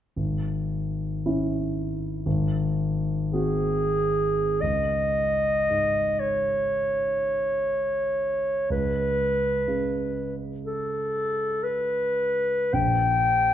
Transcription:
0.16 G#1
1.26 C#4 E4
2.26 G#1
3.33 C4 F#4 G#4
4.61 C#2 D#5
5.70 G#2
6.20 C#5
8.70 C#2 B4
9.68 C#3
10.65 A4
11.63 B4
12.73 A#1 G5

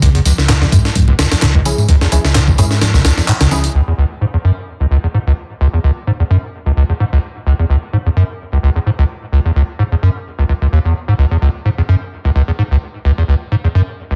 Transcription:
Already playing: C#3
0.02 C#2, kick, closed hi-hat, tambourine
0.15 E2, closed hi-hat
0.25 C#2, closed hi-hat, tambourine, high conga
0.38 C#2, snare, tambourine
0.49 G#2, snare, clap, closed hi-hat, tambourine
0.61 E2, snare, high conga
0.72 F#2 G#2, kick, closed hi-hat, tambourine
0.85 snare, tambourine
0.95 G#2, kick, closed hi-hat, tambourine, high conga
1.08 C#2, low conga
1.19 C#2, snare, closed hi-hat, tambourine
1.32 E2, snare, closed hi-hat, tambourine, high conga
1.42 C#2 G#2, snare, clap, closed hi-hat, tambourine
1.55 C#2, kick
1.65 C#4 E4 G#4, closed hi-hat, tambourine, high conga
1.78 G#2, tambourine
1.89 C#2, kick, closed hi-hat, tambourine
2.01 E2, snare, tambourine
2.12 C#2 C#4 E4 G#4, closed hi-hat, tambourine, high conga
2.25 C#2, snare, tambourine
2.35 G#2, snare, clap, closed hi-hat, tambourine
2.48 E2, kick, tambourine, high conga
2.58 F#2 G#2 C#4 E4 G#4, closed hi-hat, tambourine
2.71 snare, tambourine
2.82 snare, closed hi-hat, tambourine, high conga
2.94 C#2, snare, tambourine, low conga
3.05 C#2, snare, closed hi-hat, tambourine
3.17 E2, snare, tambourine, high conga
3.28 G#2, clap, closed hi-hat, tambourine
3.41 C#2 C#3, snare, closed hi-hat, tambourine
3.51 C#2 C#4 E4 G#4, snare, tambourine, high conga
3.64 closed hi-hat, tambourine
3.75 C#2
3.88 E2
3.98 C#2
4.21 G#2
4.34 E2
4.44 F#2
4.80 C#2
4.91 C#2
5.04 E2
5.14 G#2
5.27 C#2
5.61 C#2
5.73 E2
5.84 C#2
6.07 G#2
6.20 E2
6.30 F#2
6.66 C#2
6.77 C#2
6.89 E2
7.00 G#2
7.13 C#2
7.47 C#2
7.59 E2
7.70 C#2
7.93 G#2
8.06 E2
8.17 F#2
8.53 C#2
8.63 C#2
8.76 E2
8.86 G#2
8.99 C#2
9.32 C#2
9.45 E2
9.56 C#2
9.79 G#2
9.92 E2
10.03 F#2
10.39 C#2
10.49 C#2
10.62 C#2
10.73 D#2
10.85 E2
11.08 G#2
11.18 C#2
11.31 E2
11.42 C#2
11.65 G#2
11.78 E2
11.89 F#2
12.25 C#2
12.36 C#2
12.48 E2
12.59 G#2
12.71 C#2
13.05 C#2
13.18 E2
13.28 C#2
13.52 G#2
13.64 E2
13.75 F#2
14.11 C#2

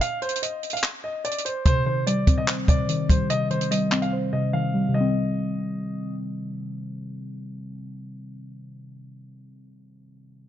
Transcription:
0.01 F5, closed hi-hat
0.22 C5, closed hi-hat
0.29 closed hi-hat
0.35 closed hi-hat
0.42 D#5, closed hi-hat
0.63 closed hi-hat
0.70 F5, closed hi-hat
0.77 closed hi-hat
0.83 clap, closed hi-hat
1.04 D#5
1.25 D5, closed hi-hat
1.31 closed hi-hat
1.38 closed hi-hat
1.45 C5, closed hi-hat
1.66 C3 C5, kick, closed hi-hat
1.86 D#3 C5
2.07 G3 D5, closed hi-hat
2.27 C4, kick, closed hi-hat
2.38 D#5
2.48 C5, clap, closed hi-hat
2.68 C3 D5, kick, closed hi-hat
2.88 D#3, closed hi-hat
3.09 G3 C5, kick, closed hi-hat
3.30 C3 D#5, closed hi-hat
3.50 D#3 C5, closed hi-hat
3.61 closed hi-hat
3.71 G3 D#5, closed hi-hat
3.92 C4, clap, closed hi-hat
4.02 F5, closed hi-hat
4.13 C5
4.33 C3 D#5
4.53 D#3 F5
4.74 G3
4.88 C3 D#3
4.94 G3 D#5
5.00 C4

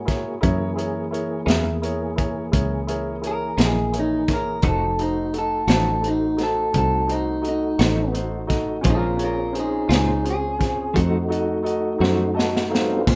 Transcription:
Already playing: G#2 A#3 F#4 G#4
0.05 E4 G#4 A#4 C#5, kick, closed hi-hat
0.10 snare
0.41 F#2 E3 A#3 E4 G#4 A#4 C#5, kick, closed hi-hat
0.76 E4 G#4 A#4 C#5, closed hi-hat
1.11 E4 G#4 A#4 C#5, closed hi-hat
1.46 E2 F#2 E3 A#3 C#4 E4 G#4 A#4 E5, closed hi-hat
1.50 snare
1.82 E4 G#4 A#4 C#5, closed hi-hat
2.16 E4 G#4 A#4 C#5, kick, closed hi-hat
2.52 C#2 E4 G#4 A#4 C#5, kick, closed hi-hat
2.87 E4 G#4 A#4 C#5, closed hi-hat
3.22 E4 G#4 A#4 C#5, closed hi-hat
3.27 A#4
3.58 A#1 F#2 E3 A#3 C#4 E4 G#4 A#4 D#5, snare, closed hi-hat
3.65 G#4
3.93 E4 G#4 A#4 C#5, closed hi-hat
4.00 D#4
4.28 E4 G#4 A#4 C#5, kick, snare, closed hi-hat
4.33 A#4
4.62 F1 F3 A3 D#4 F#4 A4 C5, kick, closed hi-hat
4.68 A4
4.99 D#4 F#4 A4 C5, closed hi-hat
5.33 D#4 F#4 A4 D#5, closed hi-hat
5.39 A4
5.67 A1 F3 A3 D#4 F#4 A4 C5, snare, closed hi-hat
5.74 A4
6.01 D#4 F#4 A4 C5, closed hi-hat
6.08 D#4
6.37 D#4 F#4 A4 C5, snare, closed hi-hat
6.43 A4
6.72 C2 D#4 F#4 A4 C5, kick, closed hi-hat
6.78 A4
7.07 D#4 F#4 A4 C5, closed hi-hat
7.12 D#4
7.42 D#4 F#4 A4 D#5, closed hi-hat
7.49 D#4
7.78 A1 F3 A3 D#4 F#4 A4 C5, snare, closed hi-hat
8.12 D#4 F#4 A4 C5, closed hi-hat
8.47 D#4 F#4 A4 D#5, kick, closed hi-hat
8.51 snare
8.81 A#1 A#2 C4 C#4 F4 G#4 C5, kick, closed hi-hat
8.85 G#3 C#4 F4
8.90 F4 A#4
9.17 C#4 F4 G#4 C#5, closed hi-hat
9.23 F4 A#4
9.53 C#4 F4 G#4 C5, closed hi-hat
9.59 D#4 G#4
9.88 C#2 A#2 G#3 C#4 F4 G#4 C5, closed hi-hat
9.92 D#4 G#4, snare
10.25 C#4 F4 G#4 C5, closed hi-hat
10.30 G#4
10.59 C#4 F4 G#4 C5, kick, snare, closed hi-hat
10.93 F2 F3 A3 D#4 F#4 A4 C5, kick, closed hi-hat
11.29 D#4 F#4 A4 D#5, closed hi-hat
11.63 D#4 F#4 A4 D#5, closed hi-hat
11.98 F#2 A3 D#4 F#4 A4 C5
12.03 F3, snare
12.34 D#4 F#4 A4 D#5 A5
12.39 snare
12.57 snare
12.70 D#4 F#4 A4 C5 F5
12.75 G3, snare
12.79 A3 B3
12.84 C4 D4
12.90 E4 F4
12.96 G4 A4
13.02 B4 C5
13.06 A#2 C#3 G#3 C4 G#4, kick, crash

